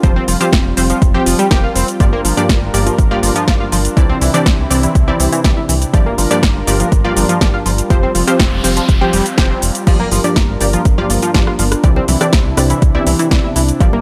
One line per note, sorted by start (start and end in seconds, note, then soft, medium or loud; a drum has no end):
0.00 0.20 F1 loud
0.00 0.17 F3 loud
0.00 0.15 F3 medium
0.00 3.93 G3 medium
0.00 0.17 C4 medium
0.00 1.98 C4 medium
0.00 3.93 F4 medium
0.00 0.15 F4 medium
0.00 0.17 G4 medium
0.00 0.17 C5 loud
0.00 kick loud
0.00 closed hi-hat medium
0.00 cabasa soft
0.16 0.24 C4 loud
0.16 0.24 C5 medium
0.28 0.36 F1 loud
0.28 0.37 F3 medium
0.28 0.37 F4 medium
0.28 open hi-hat loud
0.28 cabasa medium
0.41 0.62 F3 medium
0.41 0.62 C4 medium
0.41 0.46 F4 medium
0.41 0.62 G4 medium
0.41 0.62 C5 loud
0.41 0.46 F5 medium
0.41 closed hi-hat medium
0.41 cabasa soft
0.53 0.61 F1 loud
0.53 kick loud
0.53 snare loud
0.53 closed hi-hat medium
0.53 cabasa soft
0.65 0.73 F1 medium
0.77 0.93 F1 medium
0.77 0.91 F3 medium
0.77 0.91 C4 medium
0.77 0.91 G4 medium
0.77 0.91 C5 medium
0.77 open hi-hat loud
0.77 cabasa medium
0.90 0.98 F3 medium
0.90 0.98 F4 medium
0.90 closed hi-hat medium
0.90 cabasa soft
1.02 1.18 F1 medium
1.02 kick loud
1.02 closed hi-hat soft
1.02 cabasa soft
1.14 1.36 F3 medium
1.14 1.36 C4 medium
1.14 1.23 G4 loud
1.14 1.36 G4 medium
1.14 1.36 C5 loud
1.14 1.23 G5 medium
1.26 1.35 F1 loud
1.26 1.38 F3 medium
1.26 1.38 F4 medium
1.26 open hi-hat loud
1.26 cabasa medium
1.39 1.47 G3 loud
1.39 1.47 G4 medium
1.39 closed hi-hat medium
1.39 cabasa soft
1.51 1.67 F1 loud
1.51 1.73 F3 medium
1.51 1.73 C4 medium
1.51 1.63 G4 medium
1.51 1.73 G4 medium
1.51 1.72 A#4 loud
1.51 1.63 G5 medium
1.51 kick loud
1.51 snare loud
1.51 closed hi-hat soft
1.51 cabasa soft
1.64 1.72 F4 medium
1.64 1.72 F5 medium
1.75 1.84 F1 medium
1.75 1.88 C4 medium
1.75 1.88 C5 medium
1.75 open hi-hat loud
1.75 cabasa medium
1.88 closed hi-hat medium
1.88 cabasa soft
2.00 2.16 G1 loud
2.00 2.14 G2 medium
2.00 2.12 F3 medium
2.00 2.14 F3 medium
2.00 2.14 A#3 medium
2.00 5.90 D4 medium
2.00 2.12 F4 medium
2.00 2.14 G4 medium
2.00 3.95 A#4 medium
2.00 2.14 D5 loud
2.00 kick loud
2.00 closed hi-hat soft
2.00 cabasa soft
2.13 2.21 A#3 loud
2.13 2.21 A#4 medium
2.25 2.33 G1 loud
2.25 2.34 F3 medium
2.25 2.34 F4 medium
2.25 open hi-hat loud
2.25 cabasa medium
2.37 2.59 G2 loud
2.37 2.59 F3 medium
2.37 2.59 A#3 medium
2.37 2.42 D4 medium
2.37 2.59 G4 medium
2.37 2.59 D5 loud
2.37 2.42 D5 medium
2.37 closed hi-hat medium
2.37 cabasa soft
2.49 2.58 G1 loud
2.49 kick loud
2.49 snare loud
2.49 closed hi-hat medium
2.49 cabasa soft
2.62 2.70 G1 medium
2.74 2.90 G1 medium
2.74 2.88 G2 medium
2.74 2.88 F3 medium
2.74 2.88 A#3 medium
2.74 2.88 G4 medium
2.74 2.88 D5 medium
2.74 open hi-hat loud
2.74 cabasa medium
2.86 2.95 F3 medium
2.86 2.95 F4 medium
2.86 closed hi-hat medium
2.86 cabasa soft
2.98 3.15 G1 loud
2.98 kick loud
2.98 closed hi-hat soft
2.98 cabasa soft
3.11 3.32 G2 loud
3.11 3.32 F3 medium
3.11 3.32 A#3 medium
3.11 3.19 F4 loud
3.11 3.32 G4 medium
3.11 3.32 D5 loud
3.11 3.19 F5 medium
3.23 3.31 G1 loud
3.23 3.32 F3 medium
3.23 3.32 F4 medium
3.23 open hi-hat loud
3.23 cabasa medium
3.36 3.44 F3 loud
3.36 3.44 F4 medium
3.36 closed hi-hat medium
3.36 cabasa soft
3.48 3.56 G1 loud
3.48 3.61 G2 medium
3.48 3.61 F3 medium
3.48 3.53 F3 medium
3.48 3.61 A#3 medium
3.48 3.53 F4 medium
3.48 3.61 G4 medium
3.48 3.61 D5 medium
3.48 kick loud
3.48 snare loud
3.48 closed hi-hat medium
3.48 cabasa soft
3.60 3.65 F4 medium
3.60 3.65 F5 medium
3.72 3.89 G1 medium
3.72 3.78 F3 medium
3.72 3.78 F4 medium
3.72 open hi-hat loud
3.72 cabasa medium
3.85 closed hi-hat medium
3.85 cabasa soft
3.97 4.13 C2 loud
3.97 5.92 C3 medium
3.97 4.11 E3 medium
3.97 4.09 E3 medium
3.97 4.11 C4 medium
3.97 5.92 C4 medium
3.97 4.09 E4 medium
3.97 5.92 E4 medium
3.97 4.11 G4 medium
3.97 4.11 D5 loud
3.97 kick loud
3.97 closed hi-hat medium
3.97 cabasa soft
4.09 4.18 C4 loud
4.09 4.18 C5 medium
4.21 4.30 C2 loud
4.21 4.30 E3 medium
4.21 4.30 E4 medium
4.21 open hi-hat loud
4.21 cabasa medium
4.34 4.55 E3 loud
4.34 4.55 C4 medium
4.34 4.39 D4 medium
4.34 4.55 G4 medium
4.34 4.55 D5 loud
4.34 4.39 D5 medium
4.34 closed hi-hat medium
4.34 cabasa soft
4.46 4.54 C2 loud
4.46 kick loud
4.46 snare loud
4.46 closed hi-hat medium
4.46 cabasa soft
4.59 4.66 C2 medium
4.70 4.87 C2 medium
4.70 4.84 E3 medium
4.70 4.84 C4 medium
4.70 4.84 G4 medium
4.70 4.84 D5 medium
4.70 open hi-hat loud
4.70 cabasa medium
4.83 4.92 E3 medium
4.83 4.92 E4 medium
4.83 closed hi-hat medium
4.83 cabasa soft
4.95 5.11 C2 loud
4.95 kick loud
4.95 closed hi-hat medium
4.95 cabasa soft
5.08 5.29 E3 loud
5.08 5.29 C4 medium
5.08 5.16 E4 loud
5.08 5.29 G4 medium
5.08 5.29 D5 loud
5.08 5.16 E5 medium
5.20 5.28 C2 loud
5.20 5.29 E3 medium
5.20 5.29 E4 medium
5.20 open hi-hat loud
5.20 cabasa medium
5.32 5.41 E3 loud
5.32 5.41 E4 medium
5.32 closed hi-hat medium
5.32 cabasa soft
5.44 5.53 C2 loud
5.44 5.50 E3 medium
5.44 5.58 E3 medium
5.44 5.58 C4 medium
5.44 5.50 E4 medium
5.44 5.58 G4 medium
5.44 5.58 D5 medium
5.44 kick loud
5.44 snare loud
5.44 closed hi-hat medium
5.44 cabasa soft
5.57 5.62 E4 medium
5.57 5.62 E5 medium
5.69 5.85 C2 medium
5.69 5.74 E3 medium
5.69 5.74 E4 medium
5.69 open hi-hat loud
5.69 cabasa medium
5.82 closed hi-hat medium
5.82 cabasa soft
5.93 6.10 G1 loud
5.93 6.07 G2 loud
5.93 6.06 F3 medium
5.93 6.07 F3 medium
5.93 11.80 G3 medium
5.93 6.07 A#3 medium
5.93 7.88 D4 medium
5.93 6.06 F4 medium
5.93 11.80 F4 medium
5.93 6.07 G4 medium
5.93 7.88 A#4 medium
5.93 6.07 D5 loud
5.93 kick loud
5.93 closed hi-hat medium
5.93 cabasa soft
6.06 6.15 A#3 loud
6.06 6.15 A#4 medium
6.18 6.26 G1 loud
6.18 6.27 F3 medium
6.18 6.27 F4 medium
6.18 open hi-hat loud
6.18 cabasa medium
6.31 6.52 G2 loud
6.31 6.52 F3 medium
6.31 6.52 A#3 medium
6.31 6.36 D4 medium
6.31 6.52 G4 medium
6.31 6.52 D5 loud
6.31 6.36 D5 medium
6.31 closed hi-hat medium
6.31 cabasa soft
6.43 6.51 G1 loud
6.43 kick loud
6.43 snare loud
6.43 closed hi-hat medium
6.43 cabasa soft
6.55 6.63 G1 medium
6.67 6.84 G1 medium
6.67 6.81 G2 medium
6.67 6.81 F3 medium
6.67 6.81 A#3 medium
6.67 6.81 G4 medium
6.67 6.81 D5 medium
6.67 open hi-hat loud
6.67 cabasa medium
6.80 6.88 F3 medium
6.80 6.88 F4 medium
6.80 closed hi-hat medium
6.80 cabasa soft
6.92 7.08 G1 loud
6.92 kick loud
6.92 closed hi-hat medium
6.92 cabasa soft
7.05 7.26 G2 loud
7.05 7.26 F3 medium
7.05 7.26 A#3 medium
7.05 7.13 F4 loud
7.05 7.26 G4 medium
7.05 7.26 D5 loud
7.05 7.13 F5 medium
7.17 7.25 G1 loud
7.17 7.25 F3 medium
7.17 7.25 F4 medium
7.17 open hi-hat loud
7.17 cabasa medium
7.29 7.37 F3 loud
7.29 7.38 F4 medium
7.29 closed hi-hat medium
7.29 cabasa soft
7.41 7.49 G1 loud
7.41 7.55 G2 medium
7.41 7.46 F3 medium
7.41 7.55 F3 medium
7.41 7.55 A#3 medium
7.41 7.46 F4 medium
7.41 7.55 G4 medium
7.41 7.55 D5 medium
7.41 kick loud
7.41 snare loud
7.41 closed hi-hat medium
7.41 cabasa soft
7.54 7.59 F4 medium
7.54 7.59 F5 medium
7.66 7.82 G1 medium
7.66 7.71 F3 medium
7.66 7.71 F4 medium
7.66 open hi-hat loud
7.66 cabasa medium
7.78 closed hi-hat medium
7.78 cabasa soft
7.90 8.07 F1 loud
7.90 8.04 F3 loud
7.90 8.02 F3 medium
7.90 8.04 C4 medium
7.90 9.85 C4 medium
7.90 8.02 F4 medium
7.90 8.04 G4 medium
7.90 8.04 C5 loud
7.90 kick loud
7.90 closed hi-hat medium
7.90 noise sweep medium
7.90 cabasa soft
8.03 8.11 C4 loud
8.03 8.11 C5 medium
8.15 8.23 F1 loud
8.15 8.24 F3 medium
8.15 8.24 F4 medium
8.15 open hi-hat loud
8.15 cabasa medium
8.28 8.49 F3 medium
8.28 8.49 C4 medium
8.28 8.33 F4 medium
8.28 8.49 G4 medium
8.28 8.49 C5 loud
8.28 8.33 F5 medium
8.28 closed hi-hat medium
8.28 cabasa soft
8.39 8.48 F1 loud
8.39 kick loud
8.39 snare loud
8.39 closed hi-hat medium
8.39 cabasa soft
8.52 8.60 F1 medium
8.64 8.80 F1 medium
8.64 8.78 F3 medium
8.64 8.78 C4 medium
8.64 8.78 G4 medium
8.64 8.78 C5 medium
8.64 open hi-hat loud
8.64 cabasa medium
8.77 8.85 F3 medium
8.77 8.85 F4 medium
8.77 closed hi-hat medium
8.77 cabasa soft
8.89 9.05 F1 loud
8.89 kick loud
8.89 closed hi-hat medium
8.89 cabasa soft
9.01 9.23 F3 loud
9.01 9.23 C4 medium
9.01 9.10 G4 loud
9.01 9.23 G4 medium
9.01 9.23 C5 loud
9.01 9.10 G5 medium
9.13 9.21 F1 loud
9.13 9.25 G3 loud
9.13 9.25 G4 medium
9.13 open hi-hat loud
9.13 cabasa medium
9.26 closed hi-hat medium
9.26 cabasa soft
9.38 9.54 F1 loud
9.38 9.52 F3 medium
9.38 9.52 C4 medium
9.38 9.52 G4 medium
9.38 9.47 G4 medium
9.38 9.52 C5 medium
9.38 9.47 G5 medium
9.38 kick loud
9.38 snare loud
9.38 closed hi-hat medium
9.38 cabasa soft
9.50 9.59 C4 medium
9.50 9.59 C5 medium
9.62 9.71 F1 medium
9.62 open hi-hat loud
9.62 cabasa medium
9.75 closed hi-hat medium
9.75 cabasa soft
9.87 10.03 G1 loud
9.87 10.01 G2 loud
9.87 9.99 F3 medium
9.87 10.01 F3 medium
9.87 10.01 A#3 medium
9.87 14.01 D4 medium
9.87 9.99 F4 medium
9.87 10.01 G4 medium
9.87 11.82 A#4 medium
9.87 10.01 D5 loud
9.87 kick loud
9.87 closed hi-hat medium
9.87 crash medium
9.87 cabasa soft
10.00 10.08 A#3 loud
10.00 10.08 A#4 medium
10.00 low conga medium
10.12 10.20 G1 loud
10.12 10.20 F3 medium
10.12 10.20 F4 medium
10.12 open hi-hat loud
10.12 low conga medium
10.12 cabasa medium
10.24 10.46 G2 medium
10.24 10.46 F3 medium
10.24 10.46 A#3 medium
10.24 10.29 D4 medium
10.24 10.46 G4 medium
10.24 10.46 D5 loud
10.24 10.29 D5 medium
10.24 closed hi-hat medium
10.24 cabasa soft
10.36 10.44 G1 loud
10.36 kick loud
10.36 snare loud
10.36 closed hi-hat medium
10.36 cabasa soft
10.49 10.57 G1 medium
10.61 10.77 G1 medium
10.61 10.75 G2 medium
10.61 10.75 F3 medium
10.61 10.75 A#3 medium
10.61 10.75 G4 medium
10.61 10.75 D5 medium
10.61 open hi-hat loud
10.61 cabasa medium
10.73 10.82 F3 medium
10.73 10.82 F4 medium
10.73 closed hi-hat medium
10.73 cabasa soft
10.85 11.02 G1 loud
10.85 kick loud
10.85 closed hi-hat medium
10.85 cabasa soft
10.98 11.19 G2 medium
10.98 11.19 F3 medium
10.98 11.19 A#3 medium
10.98 11.06 F4 loud
10.98 11.19 G4 medium
10.98 11.19 D5 loud
10.98 11.06 F5 medium
10.98 low conga medium
11.10 11.18 G1 loud
11.10 11.19 F3 medium
11.10 11.19 F4 medium
11.10 open hi-hat loud
11.10 cabasa medium
11.22 11.31 F3 loud
11.22 11.31 F4 medium
11.22 closed hi-hat medium
11.22 cabasa soft
11.34 11.43 G1 loud
11.34 11.48 G2 medium
11.34 11.48 F3 medium
11.34 11.40 F3 medium
11.34 11.48 A#3 medium
11.34 11.40 F4 medium
11.34 11.48 G4 medium
11.34 11.48 D5 medium
11.34 kick loud
11.34 snare loud
11.34 closed hi-hat medium
11.34 cabasa soft
11.47 11.52 F4 medium
11.47 11.52 F5 medium
11.47 cross-stick medium
11.59 11.75 G1 medium
11.59 11.64 F3 medium
11.59 11.65 F4 medium
11.59 open hi-hat loud
11.59 high conga medium
11.59 cabasa medium
11.72 cross-stick medium
11.72 closed hi-hat medium
11.72 cabasa soft
11.84 12.00 C2 loud
11.84 13.78 C3 medium
11.84 11.97 E3 medium
11.84 11.96 E3 medium
11.84 13.78 C4 medium
11.84 11.97 C4 medium
11.84 13.78 E4 loud
11.84 11.96 E4 medium
11.84 11.97 G4 medium
11.84 11.97 D5 loud
11.84 kick loud
11.84 closed hi-hat medium
11.84 cabasa soft
11.96 12.05 C4 loud
11.96 12.05 C5 medium
11.96 low conga loud
12.08 12.17 C2 loud
12.08 12.17 E3 medium
12.08 12.17 E4 medium
12.08 open hi-hat loud
12.08 low conga medium
12.08 cabasa medium
12.21 12.42 E3 loud
12.21 12.42 C4 medium
12.21 12.26 D4 medium
12.21 12.42 G4 medium
12.21 12.42 D5 loud
12.21 12.26 D5 medium
12.21 cross-stick medium
12.21 closed hi-hat medium
12.21 cabasa soft
12.33 12.41 C2 loud
12.33 kick loud
12.33 snare loud
12.33 closed hi-hat medium
12.33 cabasa soft
12.45 12.53 C2 medium
12.57 12.74 C2 medium
12.57 12.71 E3 medium
12.57 12.71 C4 medium
12.57 12.71 G4 medium
12.57 12.71 D5 medium
12.57 cross-stick medium
12.57 open hi-hat loud
12.57 cabasa medium
12.70 12.79 E3 medium
12.70 12.79 E4 medium
12.70 closed hi-hat medium
12.70 cabasa soft
12.82 12.98 C2 loud
12.82 kick loud
12.82 closed hi-hat medium
12.82 cabasa soft
12.95 13.16 E3 loud
12.95 13.16 C4 medium
12.95 13.03 E4 loud
12.95 13.16 G4 medium
12.95 13.16 D5 loud
12.95 13.03 E5 medium
12.95 high conga medium
13.07 13.15 C2 loud
13.07 13.15 E3 medium
13.07 13.16 E4 medium
13.07 open hi-hat loud
13.07 cabasa medium
13.19 13.28 E3 loud
13.19 13.28 E4 medium
13.19 closed hi-hat medium
13.19 cabasa soft
13.31 13.39 C2 loud
13.31 13.45 E3 medium
13.31 13.37 E3 medium
13.31 13.45 C4 medium
13.31 13.37 E4 medium
13.31 13.45 G4 medium
13.31 13.45 D5 medium
13.31 kick loud
13.31 snare loud
13.31 closed hi-hat medium
13.31 cabasa soft
13.44 13.49 E4 medium
13.44 13.49 E5 medium
13.44 high conga medium
13.56 13.72 C2 medium
13.56 13.61 E3 medium
13.56 13.61 E4 medium
13.56 open hi-hat loud
13.56 cabasa medium
13.68 closed hi-hat medium
13.68 cabasa soft
13.80 13.97 G1 loud
13.80 13.94 G2 loud
13.80 13.94 F3 medium
13.80 13.92 F3 medium
13.80 14.01 G3 medium
13.80 13.94 A#3 medium
13.80 14.01 F4 medium
13.80 13.92 F4 medium
13.80 13.94 G4 medium
13.80 14.01 A#4 medium
13.80 13.94 D5 loud
13.80 kick loud
13.80 closed hi-hat soft
13.80 cabasa soft
13.93 14.01 A#3 loud
13.93 14.01 A#4 medium
13.93 low conga loud